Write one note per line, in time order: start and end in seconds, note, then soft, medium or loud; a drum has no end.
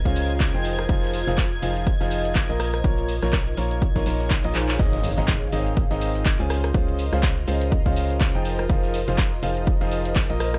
0.00 3.49 F4 loud
0.00 3.49 A#4 loud
0.00 2.60 C5 medium
0.00 3.49 D#5 medium
0.00 4.80 G#6 medium
0.05 0.51 C#2 loud
0.05 0.51 C#3 medium
0.05 0.51 C#4 medium
0.05 0.51 F4 medium
0.05 0.51 G#4 medium
0.05 0.51 C5 medium
0.05 0.51 F5 loud
0.05 kick medium
0.05 closed hi-hat soft
0.05 cabasa soft
0.16 open hi-hat loud
0.16 cabasa medium
0.16 shaker medium
0.30 closed hi-hat medium
0.30 cabasa soft
0.40 kick loud
0.40 snare loud
0.40 clap loud
0.40 closed hi-hat medium
0.40 cabasa soft
0.40 shaker medium
0.54 0.87 F1 loud
0.54 0.81 F3 medium
0.54 0.81 D#4 medium
0.54 0.81 F4 medium
0.54 0.81 G#4 medium
0.54 0.81 C5 medium
0.54 0.81 G5 medium
0.54 closed hi-hat soft
0.54 cabasa soft
0.65 open hi-hat loud
0.65 cabasa medium
0.65 shaker medium
0.79 cross-stick medium
0.79 closed hi-hat soft
0.79 cabasa soft
0.89 1.25 F1 medium
0.89 1.17 F3 medium
0.89 1.17 D#4 medium
0.89 1.17 F4 medium
0.89 1.17 G#4 medium
0.89 1.17 C5 medium
0.89 1.17 F5 medium
0.89 kick loud
0.89 closed hi-hat medium
0.89 cabasa soft
0.89 shaker medium
1.03 snare soft
1.03 closed hi-hat soft
1.03 cabasa soft
1.13 open hi-hat medium
1.13 open hi-hat loud
1.13 cabasa medium
1.27 1.60 F1 medium
1.27 1.43 F3 medium
1.27 1.43 D#4 medium
1.27 1.43 F4 medium
1.27 1.43 G#4 medium
1.27 1.43 C5 medium
1.27 1.43 F5 medium
1.27 snare soft
1.27 closed hi-hat medium
1.27 cabasa soft
1.38 kick loud
1.38 snare loud
1.38 clap loud
1.38 closed hi-hat medium
1.38 cabasa soft
1.38 shaker medium
1.52 cabasa soft
1.62 1.98 F1 medium
1.62 1.90 F3 medium
1.62 1.90 D#4 medium
1.62 1.90 F4 medium
1.62 1.90 G#4 medium
1.62 1.90 C5 medium
1.62 1.90 F5 medium
1.62 open hi-hat loud
1.62 cabasa medium
1.62 shaker medium
1.76 closed hi-hat medium
1.76 cabasa soft
1.87 kick loud
1.87 closed hi-hat medium
1.87 cabasa soft
1.87 shaker medium
2.01 2.47 F1 medium
2.01 2.46 F3 medium
2.01 2.46 D#4 medium
2.01 2.46 F4 medium
2.01 2.46 G#4 medium
2.01 2.46 C5 medium
2.01 2.46 F5 loud
2.01 snare soft
2.01 closed hi-hat soft
2.01 cabasa soft
2.11 open hi-hat loud
2.11 cabasa medium
2.11 shaker medium
2.25 closed hi-hat soft
2.25 closed hi-hat medium
2.25 cabasa soft
2.35 kick loud
2.35 snare loud
2.35 clap loud
2.35 closed hi-hat medium
2.35 cabasa soft
2.35 shaker medium
2.49 2.82 A#1 loud
2.49 2.76 A#3 medium
2.49 2.76 F4 medium
2.49 2.76 A#4 medium
2.49 2.76 D#5 medium
2.49 closed hi-hat soft
2.49 cabasa soft
2.60 5.48 D#4 medium
2.60 cross-stick medium
2.60 open hi-hat loud
2.60 cabasa medium
2.60 shaker medium
2.74 cross-stick medium
2.74 closed hi-hat medium
2.74 closed hi-hat soft
2.74 cabasa soft
2.84 3.20 A#1 loud
2.84 3.12 A#3 medium
2.84 3.12 F4 medium
2.84 3.12 A#4 medium
2.84 3.12 C#5 medium
2.84 kick loud
2.84 closed hi-hat medium
2.84 cabasa soft
2.84 shaker medium
2.94 4.79 C#5 medium
2.98 closed hi-hat soft
2.98 cabasa soft
3.05 5.48 G#4 medium
3.05 open hi-hat loud
3.05 cabasa medium
3.05 shaker medium
3.22 3.55 A#1 loud
3.22 3.38 A#3 medium
3.22 3.38 F4 medium
3.22 3.38 A#4 medium
3.22 3.38 C#5 medium
3.22 cross-stick medium
3.22 snare soft
3.22 closed hi-hat medium
3.22 cabasa soft
3.33 kick loud
3.33 cross-stick medium
3.33 snare loud
3.33 clap loud
3.33 closed hi-hat medium
3.33 cabasa soft
3.33 shaker medium
3.47 closed hi-hat soft
3.47 cabasa soft
3.57 3.93 A#1 medium
3.57 3.85 A#3 medium
3.57 3.85 F4 medium
3.57 3.85 A#4 medium
3.57 3.85 C#5 medium
3.57 5.48 F5 medium
3.57 open hi-hat loud
3.57 cabasa medium
3.71 closed hi-hat medium
3.71 cabasa soft
3.82 kick loud
3.82 closed hi-hat medium
3.82 cabasa soft
3.82 shaker medium
3.96 4.04 A#1 loud
3.96 4.04 A#3 medium
3.96 4.04 F4 medium
3.96 4.04 A#4 medium
3.96 4.04 C#5 loud
3.96 kick medium
3.96 snare soft
3.96 closed hi-hat soft
3.96 cabasa soft
4.06 4.42 A#1 loud
4.06 4.34 A#3 medium
4.06 4.34 F4 medium
4.06 4.34 A#4 medium
4.06 4.34 C#5 medium
4.06 open hi-hat medium
4.06 open hi-hat loud
4.06 cabasa medium
4.20 snare soft
4.20 closed hi-hat medium
4.20 cabasa soft
4.30 kick loud
4.30 snare loud
4.30 clap loud
4.30 closed hi-hat medium
4.30 cabasa soft
4.30 shaker medium
4.44 4.53 A#1 loud
4.44 4.52 A#3 medium
4.44 4.52 F4 medium
4.44 4.52 A#4 medium
4.44 4.52 D#5 loud
4.44 closed hi-hat soft
4.44 cabasa soft
4.55 4.77 A#1 medium
4.55 4.77 F4 medium
4.55 4.77 A#4 medium
4.55 4.77 C5 medium
4.55 clap medium
4.55 open hi-hat loud
4.55 cabasa medium
4.69 clap loud
4.69 closed hi-hat medium
4.69 cabasa soft
4.79 5.15 G#1 loud
4.79 5.07 G#2 medium
4.79 5.07 C4 medium
4.79 5.07 D#4 medium
4.79 5.07 G#4 medium
4.79 5.07 A#4 medium
4.79 10.40 C5 loud
4.79 5.07 D#5 medium
4.79 kick loud
4.79 closed hi-hat medium
4.79 crash loud
4.79 impact medium
4.79 cabasa soft
4.79 shaker medium
4.93 snare soft
4.93 closed hi-hat soft
5.04 open hi-hat loud
5.04 open hi-hat medium
5.04 cabasa medium
5.18 5.50 G#1 loud
5.18 5.34 G#2 medium
5.18 5.34 C4 medium
5.18 5.34 D#4 medium
5.18 5.34 G#4 medium
5.18 5.34 A#4 medium
5.18 5.34 D#5 medium
5.18 snare soft
5.18 closed hi-hat medium
5.18 cabasa soft
5.24 10.59 A#4 medium
5.28 10.59 F4 medium
5.28 kick loud
5.28 snare loud
5.28 clap loud
5.28 closed hi-hat medium
5.28 cabasa soft
5.28 shaker medium
5.47 10.59 D#5 loud
5.52 5.88 G#1 loud
5.52 5.80 G#2 medium
5.52 5.80 C4 medium
5.52 5.80 D#4 medium
5.52 5.80 G#4 medium
5.52 5.80 A#4 medium
5.52 5.80 D#5 medium
5.52 open hi-hat loud
5.52 cabasa medium
5.52 shaker medium
5.66 closed hi-hat medium
5.66 cabasa soft
5.77 kick loud
5.77 closed hi-hat medium
5.77 cabasa soft
5.77 shaker medium
5.91 6.37 G#1 medium
5.91 6.36 G#2 medium
5.91 6.36 C4 medium
5.91 6.36 D#4 medium
5.91 6.36 G#4 medium
5.91 6.36 A#4 medium
5.91 6.36 D#5 loud
5.91 snare soft
5.91 closed hi-hat soft
6.01 open hi-hat loud
6.01 cabasa medium
6.01 shaker medium
6.15 closed hi-hat soft
6.15 closed hi-hat medium
6.15 cabasa soft
6.26 kick loud
6.26 snare loud
6.26 clap loud
6.26 closed hi-hat medium
6.26 cabasa soft
6.26 shaker medium
6.40 6.72 C#2 loud
6.40 6.66 C#3 medium
6.40 6.66 C#4 medium
6.40 6.66 F4 medium
6.40 6.66 G#4 medium
6.40 6.66 C5 medium
6.40 6.66 G#5 medium
6.40 closed hi-hat soft
6.50 cross-stick medium
6.50 open hi-hat loud
6.50 cabasa medium
6.50 shaker medium
6.64 cross-stick medium
6.64 closed hi-hat soft
6.64 closed hi-hat medium
6.64 cabasa soft
6.74 7.10 C#2 loud
6.74 7.02 C#3 medium
6.74 7.02 C#4 medium
6.74 7.02 F4 medium
6.74 7.02 G#4 medium
6.74 7.02 C5 medium
6.74 7.02 F5 medium
6.74 kick loud
6.74 closed hi-hat medium
6.74 cabasa soft
6.74 shaker medium
6.88 closed hi-hat soft
6.99 open hi-hat loud
6.99 cabasa medium
6.99 shaker medium
7.13 7.45 C#2 loud
7.13 7.29 C#3 medium
7.13 7.29 C#4 medium
7.13 7.29 F4 medium
7.13 7.29 G#4 medium
7.13 7.29 C5 medium
7.13 7.29 F5 medium
7.13 cross-stick medium
7.13 snare soft
7.13 closed hi-hat medium
7.13 cabasa soft
7.23 kick loud
7.23 snare loud
7.23 clap loud
7.23 closed hi-hat medium
7.23 cabasa soft
7.23 shaker medium
7.37 closed hi-hat soft
7.47 7.83 C#2 loud
7.47 7.75 C#3 medium
7.47 7.75 C#4 medium
7.47 7.75 F4 medium
7.47 7.75 G#4 medium
7.47 7.75 C5 medium
7.47 7.75 F5 medium
7.47 open hi-hat loud
7.47 cabasa medium
7.47 shaker medium
7.61 closed hi-hat soft
7.61 closed hi-hat medium
7.61 cabasa soft
7.72 kick loud
7.72 closed hi-hat medium
7.72 cabasa soft
7.72 shaker medium
7.86 8.32 C#2 medium
7.86 8.31 C#3 medium
7.86 8.31 C#4 medium
7.86 8.31 F4 medium
7.86 8.31 G#4 medium
7.86 8.31 C5 medium
7.86 8.31 F5 loud
7.86 kick medium
7.86 closed hi-hat soft
7.96 open hi-hat loud
7.96 cabasa medium
7.96 shaker medium
8.10 closed hi-hat medium
8.10 cabasa soft
8.21 kick loud
8.21 snare loud
8.21 clap loud
8.21 closed hi-hat medium
8.21 cabasa soft
8.21 shaker medium
8.35 8.68 F1 loud
8.35 8.61 F3 medium
8.35 8.61 D#4 medium
8.35 8.61 F4 medium
8.35 8.61 G#4 medium
8.35 8.61 C5 medium
8.35 8.61 G5 medium
8.35 closed hi-hat soft
8.45 open hi-hat loud
8.45 cabasa medium
8.45 shaker medium
8.59 cross-stick medium
8.59 closed hi-hat medium
8.59 cabasa soft
8.69 9.05 F1 loud
8.69 8.97 F3 medium
8.69 8.97 D#4 medium
8.69 8.97 F4 medium
8.69 8.97 G#4 medium
8.69 8.97 C5 medium
8.69 8.97 F5 medium
8.69 kick loud
8.69 closed hi-hat medium
8.69 cabasa soft
8.69 shaker medium
8.83 snare soft
8.83 closed hi-hat soft
8.94 open hi-hat medium
8.94 open hi-hat loud
8.94 cabasa medium
9.08 9.41 F1 loud
9.08 9.24 F3 medium
9.08 9.24 D#4 medium
9.08 9.24 F4 medium
9.08 9.24 G#4 medium
9.08 9.24 C5 medium
9.08 9.24 F5 medium
9.08 snare soft
9.08 closed hi-hat soft
9.08 cabasa soft
9.18 kick loud
9.18 snare loud
9.18 clap loud
9.18 closed hi-hat medium
9.18 cabasa soft
9.18 shaker medium
9.43 9.78 F1 medium
9.43 9.70 F3 medium
9.43 9.70 D#4 medium
9.43 9.70 F4 medium
9.43 9.70 G#4 medium
9.43 9.70 C5 medium
9.43 9.70 F5 medium
9.43 open hi-hat loud
9.43 cabasa medium
9.43 shaker medium
9.57 closed hi-hat medium
9.57 cabasa soft
9.67 kick loud
9.67 closed hi-hat medium
9.67 cabasa soft
9.67 shaker medium
9.81 10.27 F1 loud
9.81 10.26 F3 medium
9.81 10.26 D#4 medium
9.81 10.26 F4 medium
9.81 10.26 G#4 medium
9.81 10.26 C5 medium
9.81 10.26 F5 loud
9.81 snare soft
9.81 closed hi-hat soft
9.91 open hi-hat loud
9.91 cabasa medium
9.91 shaker medium
10.05 closed hi-hat soft
10.05 closed hi-hat medium
10.05 cabasa soft
10.16 kick loud
10.16 snare loud
10.16 clap loud
10.16 closed hi-hat medium
10.16 cabasa soft
10.16 shaker medium
10.30 10.59 A#1 loud
10.30 10.57 A#3 medium
10.30 10.57 F4 medium
10.30 10.57 A#4 medium
10.30 10.57 D#5 medium
10.30 closed hi-hat soft
10.40 10.59 D#4 loud
10.40 cross-stick medium
10.40 open hi-hat loud
10.40 cabasa medium
10.40 shaker medium
10.54 cross-stick medium
10.54 closed hi-hat soft
10.54 cabasa soft